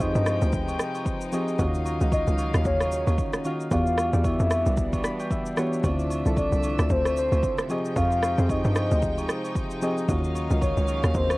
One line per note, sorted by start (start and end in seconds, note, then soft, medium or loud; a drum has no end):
0.00 0.13 F2 medium
0.00 1.55 C3 medium
0.00 1.32 F3 medium
0.00 1.55 F3 medium
0.00 1.57 G#3 medium
0.00 1.33 C4 medium
0.00 3.67 D#4 medium
0.00 1.33 G4 medium
0.00 1.34 G#4 medium
0.00 1.61 B4 medium
0.00 0.77 C5 medium
0.00 1.34 D#5 medium
0.00 1.06 D#5 loud
0.00 1.57 G5 medium
0.00 kick loud
0.00 shaker medium
0.15 0.40 G2 medium
0.15 shaker medium
0.26 cross-stick loud
0.26 high agogo medium
0.26 shaker medium
0.41 0.77 D2 medium
0.41 shaker medium
0.52 kick loud
0.52 shaker medium
0.68 high agogo medium
0.68 shaker medium
0.79 cross-stick loud
0.79 shaker medium
0.95 high agogo medium
0.95 shaker medium
1.06 kick loud
1.06 shaker medium
1.21 shaker medium
1.32 1.54 F3 medium
1.32 1.55 C4 medium
1.32 1.55 G4 medium
1.32 1.55 G#4 medium
1.32 1.55 D#5 loud
1.32 high agogo medium
1.32 shaker medium
1.48 shaker medium
1.59 1.98 D#2 loud
1.59 3.69 C#3 medium
1.59 1.92 D#3 loud
1.59 3.69 F#3 medium
1.59 3.69 A#3 medium
1.59 1.92 C#4 medium
1.59 1.92 F4 medium
1.59 1.92 F#4 medium
1.59 1.93 D#5 loud
1.59 3.69 F5 medium
1.59 kick loud
1.59 high agogo medium
1.59 shaker medium
1.74 shaker medium
1.86 high agogo medium
1.86 shaker medium
2.01 2.26 C#2 medium
2.01 2.85 D#3 medium
2.01 2.85 C#4 medium
2.01 2.85 F4 medium
2.01 2.86 F#4 medium
2.01 2.86 D#5 medium
2.01 shaker medium
2.12 2.62 D#5 loud
2.12 kick loud
2.12 high agogo medium
2.12 shaker medium
2.27 2.52 C#2 loud
2.27 shaker medium
2.38 high agogo medium
2.38 shaker medium
2.54 2.65 D#2 medium
2.54 cross-stick loud
2.54 shaker medium
2.65 3.05 D#2 loud
2.65 2.91 C#5 loud
2.65 kick loud
2.65 shaker medium
2.80 cross-stick medium
2.80 high agogo medium
2.80 shaker medium
2.92 3.42 C#5 loud
2.92 shaker loud
3.07 3.18 D#2 loud
3.07 high agogo medium
3.07 shaker medium
3.18 kick medium
3.18 shaker medium
3.33 cross-stick loud
3.33 shaker medium
3.45 3.67 D#3 medium
3.45 3.67 C#4 medium
3.45 3.67 F4 medium
3.45 3.68 F#4 medium
3.45 3.68 F5 medium
3.45 high agogo medium
3.45 shaker medium
3.60 shaker medium
3.71 4.11 E2 loud
3.71 4.04 E3 medium
3.71 5.82 E3 medium
3.71 5.82 G3 medium
3.71 5.82 B3 medium
3.71 4.04 B3 medium
3.71 7.66 D4 medium
3.71 4.04 F#4 medium
3.71 4.05 G4 medium
3.71 4.05 D5 medium
3.71 4.27 F5 loud
3.71 kick loud
3.71 high agogo medium
3.71 shaker medium
3.87 shaker soft
3.98 cross-stick loud
3.98 high agogo medium
3.98 shaker medium
4.13 4.38 E2 medium
4.13 4.97 E3 medium
4.13 4.97 B3 medium
4.13 4.98 F#4 medium
4.13 4.98 G4 medium
4.13 4.98 D5 medium
4.13 shaker medium
4.24 5.31 E5 loud
4.24 kick loud
4.24 high agogo medium
4.24 shaker medium
4.40 4.65 F2 medium
4.40 shaker medium
4.51 cross-stick loud
4.51 high agogo medium
4.51 shaker medium
4.66 5.02 C2 medium
4.66 shaker medium
4.77 kick loud
4.77 shaker medium
4.93 kick loud
4.93 high agogo medium
4.93 shaker medium
5.04 5.19 B5 medium
5.04 cross-stick loud
5.04 shaker medium
5.20 5.30 G5 medium
5.20 high agogo medium
5.20 shaker medium
5.31 5.80 E5 medium
5.31 kick medium
5.31 shaker medium
5.46 shaker medium
5.57 5.79 E3 medium
5.57 5.79 B3 medium
5.57 5.80 F#4 medium
5.57 5.80 G4 medium
5.57 5.80 C#5 loud
5.57 cross-stick loud
5.57 high agogo medium
5.57 shaker medium
5.73 shaker medium
5.84 6.23 D2 loud
5.84 10.05 C3 medium
5.84 6.16 D3 loud
5.84 10.05 F3 medium
5.84 7.68 A3 medium
5.84 6.17 C4 medium
5.84 6.17 E4 medium
5.84 6.17 F4 medium
5.84 6.17 D5 loud
5.84 7.68 E5 medium
5.84 kick loud
5.84 high agogo medium
5.84 shaker medium
5.99 shaker soft
6.10 high agogo medium
6.10 shaker medium
6.25 6.51 C2 medium
6.25 7.10 D3 medium
6.25 7.10 C4 medium
6.25 7.10 E4 medium
6.25 7.10 F4 medium
6.25 7.11 A4 medium
6.25 shaker medium
6.37 6.93 D5 loud
6.37 kick loud
6.37 high agogo medium
6.37 shaker medium
6.52 6.77 C2 loud
6.52 shaker medium
6.63 high agogo medium
6.63 shaker medium
6.79 6.89 D2 loud
6.79 cross-stick loud
6.79 shaker medium
6.90 7.29 D2 loud
6.90 7.17 C5 loud
6.90 kick loud
6.90 shaker medium
7.05 cross-stick medium
7.05 high agogo medium
7.05 shaker medium
7.17 7.67 C5 medium
7.17 shaker loud
7.32 7.42 D2 medium
7.32 high agogo medium
7.32 shaker medium
7.43 kick medium
7.43 shaker medium
7.58 cross-stick loud
7.58 shaker medium
7.69 8.23 F3 medium
7.69 10.06 G#3 medium
7.69 8.23 C4 medium
7.69 11.38 D#4 medium
7.69 8.23 G4 medium
7.69 8.23 G#4 medium
7.69 8.23 D#5 medium
7.69 10.06 G5 medium
7.69 high agogo medium
7.69 shaker medium
7.85 shaker medium
7.96 8.36 F2 loud
7.96 8.52 F5 loud
7.96 kick loud
7.96 high agogo medium
7.96 shaker medium
8.12 shaker soft
8.23 cross-stick loud
8.23 high agogo medium
8.23 shaker medium
8.38 8.63 F2 medium
8.38 9.22 F3 medium
8.38 9.22 C4 medium
8.38 9.22 G4 medium
8.38 9.23 G#4 medium
8.38 9.23 C5 medium
8.38 shaker medium
8.49 9.56 D#5 loud
8.49 kick loud
8.49 high agogo medium
8.49 shaker medium
8.65 8.90 G2 medium
8.65 shaker medium
8.75 cross-stick loud
8.75 high agogo medium
8.75 shaker medium
8.91 9.27 D2 medium
8.91 shaker medium
9.02 kick loud
9.02 shaker medium
9.18 high agogo medium
9.18 shaker medium
9.29 cross-stick loud
9.29 shaker medium
9.44 high agogo medium
9.44 shaker medium
9.55 kick loud
9.55 shaker medium
9.71 shaker medium
9.82 10.04 F3 loud
9.82 10.04 C4 medium
9.82 10.04 G4 medium
9.82 10.05 G#4 medium
9.82 10.05 D#5 loud
9.82 high agogo medium
9.82 shaker medium
9.98 shaker medium
10.08 10.48 D#2 loud
10.08 11.38 C#3 medium
10.08 10.41 D#3 loud
10.08 11.38 F#3 medium
10.08 11.38 A#3 medium
10.08 10.41 C#4 medium
10.08 10.42 F4 medium
10.08 10.42 F#4 medium
10.08 10.42 D#5 loud
10.08 11.38 F5 medium
10.08 kick loud
10.08 high agogo medium
10.08 shaker medium
10.24 shaker soft
10.35 high agogo medium
10.35 shaker medium
10.50 10.75 C#2 loud
10.50 11.34 D#3 medium
10.50 11.35 C#4 medium
10.50 11.35 F4 medium
10.50 11.35 F#4 medium
10.50 11.35 D#5 medium
10.50 shaker medium
10.61 11.17 C#5 loud
10.61 kick loud
10.61 high agogo medium
10.61 shaker medium
10.77 11.02 C#2 medium
10.77 shaker medium
10.88 high agogo medium
10.88 shaker medium
11.03 11.14 D#2 loud
11.03 cross-stick loud
11.03 shaker medium
11.14 11.38 D#2 loud
11.14 11.38 C5 loud
11.14 kick loud
11.14 shaker medium
11.30 cross-stick medium
11.30 high agogo medium
11.30 shaker medium